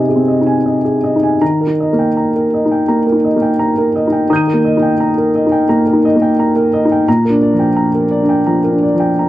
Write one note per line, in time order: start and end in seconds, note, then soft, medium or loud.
0.00 1.44 C3 soft
0.00 0.16 C4 soft
0.00 0.41 D#4 soft
0.00 0.09 G#4 soft
0.00 0.28 D#5 soft
0.00 0.47 G#5 soft
0.09 0.39 G#4 soft
0.16 0.55 C4 soft
0.28 0.58 D#5 soft
0.41 0.81 D#4 soft
0.47 0.77 G#5 soft
0.66 0.96 D#5 soft
0.85 1.15 G#4 soft
1.04 1.34 D#5 soft
1.16 1.41 D#4 soft
1.23 1.42 G#5 soft
1.41 2.84 D#3 soft
1.41 1.71 A#5 medium
1.61 1.90 A#4 soft
1.67 2.06 D#4 soft
1.80 2.09 D#5 soft
1.93 2.31 A#3 soft
1.99 2.27 G5 soft
2.17 2.45 A#5 soft
2.36 2.63 A#4 soft
2.54 2.81 D#5 soft
2.66 3.03 D#4 soft
2.71 2.99 G5 soft
2.88 3.26 A#3 soft
2.88 3.16 A#5 soft
3.07 3.35 A#4 soft
3.12 3.50 D#4 soft
3.24 3.52 D#5 soft
3.36 3.73 A#3 soft
3.42 3.70 G5 soft
3.59 3.87 A#5 soft
3.78 4.05 A#4 soft
3.95 4.23 D#5 soft
4.07 4.44 D#4 soft
4.12 4.40 G5 soft
4.30 5.65 D#3 soft
4.30 4.58 A#5 soft
4.30 7.04 D#6 soft
4.30 7.05 G6 soft
4.36 7.06 D#7 soft
4.47 4.75 A#4 soft
4.53 4.91 A#3 soft
4.65 4.93 D#5 soft
4.77 5.14 D#4 soft
4.82 5.10 G5 soft
5.00 5.28 A#5 soft
5.18 5.45 A#4 soft
5.35 5.62 D#5 soft
5.46 5.83 D#4 soft
5.52 5.80 G5 soft
5.69 6.06 A#3 soft
5.69 5.97 A#5 soft
5.87 6.15 A#4 soft
5.93 6.30 D#4 soft
6.05 6.32 D#5 soft
6.16 6.53 A#3 soft
6.22 6.49 G5 soft
6.39 6.67 A#5 soft
6.56 6.83 A#4 soft
6.73 7.01 D#5 soft
6.85 7.08 D#4 soft
6.92 7.08 G5 soft
7.08 8.43 A#2 medium
7.08 7.35 A#5 medium
7.25 7.52 A#4 soft
7.30 7.67 D4 soft
7.42 7.69 D5 soft
7.53 7.90 F3 soft
7.59 7.87 G5 soft
7.76 8.04 A#5 soft
7.94 8.22 A#4 soft
8.11 8.39 D5 soft
8.23 8.61 D4 soft
8.29 8.57 G5 soft
8.46 8.85 F3 soft
8.46 8.75 A#5 soft
8.64 8.93 A#4 soft
8.71 9.09 D4 soft
8.83 9.12 D5 soft
8.94 9.29 F3 soft
9.00 9.29 G5 soft
9.19 9.29 A#5 soft